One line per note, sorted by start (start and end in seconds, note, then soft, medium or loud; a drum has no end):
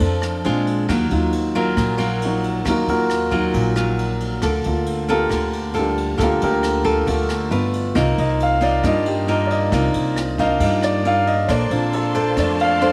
0.00 0.41 F2 medium
0.00 0.43 F3 medium
0.00 0.44 C4 soft
0.00 0.42 D4 medium
0.00 0.45 D4 soft
0.00 0.41 A4 medium
0.00 0.46 A4 medium
0.00 0.46 A#4 medium
0.00 0.41 C5 medium
0.00 0.46 C5 medium
0.00 0.46 D5 medium
0.00 kick medium
0.00 ride medium
0.22 cross-stick medium
0.22 ride soft
0.44 0.86 A#1 medium
0.44 0.74 G#3 soft
0.44 0.85 G#3 medium
0.44 0.74 C4 soft
0.44 0.74 D4 soft
0.44 0.86 D4 medium
0.44 0.86 F4 medium
0.44 ride soft
0.67 ride soft
0.89 1.09 D#2 loud
0.89 1.75 D#3 medium
0.89 1.32 F#3 medium
0.89 1.33 A#3 medium
0.89 1.33 F4 medium
0.89 kick medium
0.89 cross-stick medium
0.89 ride medium
1.11 1.73 D#2 medium
1.11 2.24 F#3 soft
1.11 2.24 D#4 soft
1.11 1.54 F4 soft
1.11 ride soft
1.32 ride soft
1.55 1.96 F#3 medium
1.55 1.96 A#3 medium
1.55 2.18 A#3 soft
1.55 1.96 F4 medium
1.55 2.18 F4 soft
1.55 2.18 F#4 soft
1.55 2.18 A#4 medium
1.55 ride soft
1.76 2.62 A#1 medium
1.76 2.63 A#2 medium
1.76 kick medium
1.76 cross-stick medium
1.76 ride medium
1.98 2.61 F#3 medium
1.98 2.61 A#3 medium
1.98 2.62 F4 medium
1.98 ride soft
2.22 2.64 F#3 soft
2.22 2.65 A#3 soft
2.22 2.64 F#4 soft
2.22 ride soft
2.26 2.65 D#4 soft
2.44 ride soft
2.65 2.86 D#2 loud
2.65 3.51 D#3 medium
2.65 3.09 F#3 medium
2.65 2.95 F#3 soft
2.65 3.09 A#3 medium
2.65 2.96 D#4 soft
2.65 3.10 F4 medium
2.65 2.69 F4 soft
2.65 kick medium
2.65 cross-stick medium
2.65 ride medium
2.70 2.88 A#3 soft
2.70 2.89 F4 soft
2.70 2.88 F#4 soft
2.70 2.88 A#4 medium
2.87 3.49 D#2 medium
2.87 3.51 A#3 soft
2.87 3.32 F4 medium
2.87 3.51 F#4 medium
2.87 3.51 A#4 medium
2.87 ride soft
3.10 cross-stick medium
3.10 ride soft
3.31 3.72 F#3 medium
3.31 3.52 F#3 soft
3.31 3.72 A#3 medium
3.31 3.53 D#4 soft
3.31 3.72 F4 medium
3.31 3.53 F4 soft
3.31 kick medium
3.31 ride soft
3.54 4.39 A#1 medium
3.54 4.40 A#2 medium
3.54 kick medium
3.54 ride medium
3.76 4.39 F#3 medium
3.76 4.39 A#3 medium
3.76 4.39 F4 medium
3.76 cross-stick medium
3.76 ride soft
3.99 ride soft
4.20 ride soft
4.42 4.63 D2 loud
4.42 5.28 D3 medium
4.42 4.86 A#3 soft
4.42 4.86 F4 medium
4.42 4.86 A4 medium
4.42 kick medium
4.42 cross-stick medium
4.42 ride medium
4.64 5.27 D2 medium
4.64 4.95 A#3 soft
4.64 4.95 F4 soft
4.64 ride soft
4.86 ride soft
5.08 5.71 A#3 medium
5.08 5.72 A#3 soft
5.08 5.71 F4 medium
5.08 5.72 F4 soft
5.08 5.72 G4 soft
5.08 5.72 A4 medium
5.08 5.72 A#4 medium
5.08 ride soft
5.29 6.15 D2 medium
5.29 6.16 D3 medium
5.29 kick medium
5.29 cross-stick medium
5.29 ride medium
5.53 ride soft
5.74 6.15 A#3 medium
5.74 6.15 F4 medium
5.74 6.15 A4 medium
5.74 ride soft
5.78 6.18 G3 soft
5.78 6.18 A#3 soft
5.78 6.18 D4 soft
5.78 6.18 G4 soft
5.98 ride soft
6.17 6.40 D2 medium
6.17 7.04 D3 medium
6.17 6.62 A#3 medium
6.17 6.22 A#3 soft
6.17 6.62 F4 medium
6.17 6.63 A4 medium
6.17 kick medium
6.17 cross-stick medium
6.17 ride medium
6.23 6.43 A#3 soft
6.23 6.43 F4 soft
6.23 6.42 G4 medium
6.23 6.42 A#4 medium
6.41 7.04 D2 medium
6.41 7.05 A#3 medium
6.41 7.05 F4 medium
6.41 7.05 G4 medium
6.41 7.05 A#4 medium
6.41 ride soft
6.63 cross-stick medium
6.63 ride medium
6.84 7.47 A#3 medium
6.84 7.48 F4 medium
6.84 7.48 A4 medium
6.84 kick medium
6.84 ride soft
7.07 7.49 D2 medium
7.07 7.49 D3 medium
7.07 7.27 A3 soft
7.07 7.27 A#3 soft
7.07 7.28 F4 soft
7.07 kick medium
7.07 ride medium
7.29 cross-stick medium
7.29 ride soft
7.51 7.92 G1 medium
7.51 7.81 A3 soft
7.51 7.81 B3 soft
7.51 7.92 D4 medium
7.51 7.92 F4 medium
7.51 7.81 F4 soft
7.51 7.92 B4 medium
7.51 ride soft
7.73 ride soft
7.95 8.16 C2 loud
7.95 8.81 C3 medium
7.95 8.58 A#3 medium
7.95 8.82 A#3 soft
7.95 8.58 D#4 medium
7.95 8.83 D#4 soft
7.95 8.58 F4 medium
7.95 8.83 F4 soft
7.95 kick medium
7.95 cross-stick medium
7.95 ride medium
8.18 8.80 C2 medium
8.18 8.40 D#5 medium
8.18 ride soft
8.40 8.63 F5 medium
8.40 ride soft
8.61 9.24 A#3 medium
8.61 9.24 D#4 medium
8.61 9.25 F4 medium
8.61 8.84 D5 medium
8.61 ride soft
8.84 9.68 G2 medium
8.84 9.70 G3 medium
8.84 9.04 A#3 soft
8.84 9.04 D4 soft
8.84 9.04 D#4 soft
8.84 9.04 F4 soft
8.84 9.07 D#5 medium
8.84 kick medium
8.84 cross-stick medium
8.84 ride medium
9.06 9.28 G4 soft
9.06 ride soft
9.28 9.69 A#3 medium
9.28 9.69 D#4 medium
9.28 9.69 F4 medium
9.28 9.51 A#4 medium
9.28 ride soft
9.47 9.49 D5 medium
9.47 ride soft
9.51 9.92 D#5 medium
9.72 9.93 C2 loud
9.72 10.58 C3 medium
9.72 10.01 A#3 soft
9.72 10.16 A#3 medium
9.72 10.02 D#4 soft
9.72 10.16 D#4 medium
9.72 10.02 F4 soft
9.72 10.17 F4 medium
9.72 kick medium
9.72 cross-stick medium
9.72 ride medium
9.94 10.57 C2 medium
9.94 ride soft
10.16 cross-stick medium
10.16 ride soft
10.38 10.58 A#3 soft
10.38 11.01 A#3 medium
10.38 10.59 D4 soft
10.38 10.58 D#4 soft
10.38 11.02 D#4 medium
10.38 10.59 F4 soft
10.38 11.02 F4 medium
10.38 10.60 F5 medium
10.38 kick medium
10.38 ride soft
10.60 11.45 G2 medium
10.60 11.47 G3 medium
10.60 10.83 D#5 medium
10.60 kick medium
10.60 ride medium
10.82 11.05 D5 medium
10.82 cross-stick medium
10.82 ride soft
11.05 11.33 A#3 medium
11.05 11.34 D#4 medium
11.05 11.34 F4 medium
11.05 11.27 F5 medium
11.05 ride soft
11.27 11.48 D#5 medium
11.27 ride soft
11.46 11.69 A#1 loud
11.46 12.92 A#3 medium
11.46 12.35 A#3 medium
11.46 11.93 D4 medium
11.46 11.93 A4 medium
11.46 11.93 C5 medium
11.46 11.49 C#5 soft
11.46 12.92 D5 medium
11.46 12.92 A5 medium
11.46 12.92 C6 medium
11.46 kick medium
11.46 cross-stick medium
11.46 ride medium
11.51 11.71 D5 medium
11.71 12.33 A#1 medium
11.71 12.36 C4 soft
11.71 12.36 D4 soft
11.71 11.93 F4 soft
11.71 ride soft
11.93 12.15 A4 medium
11.93 ride soft
12.15 12.78 D4 medium
12.15 12.78 A4 medium
12.15 12.36 C5 medium
12.15 12.78 C5 medium
12.15 ride soft
12.36 12.92 F2 medium
12.36 12.92 F3 medium
12.36 12.57 A3 soft
12.36 12.57 C4 soft
12.36 12.57 D4 soft
12.36 12.60 D5 medium
12.36 kick medium
12.36 cross-stick medium
12.36 ride medium
12.59 12.74 F5 medium
12.59 ride soft
12.81 12.92 D4 medium
12.81 12.92 A4 medium
12.81 12.92 C5 medium
12.81 ride soft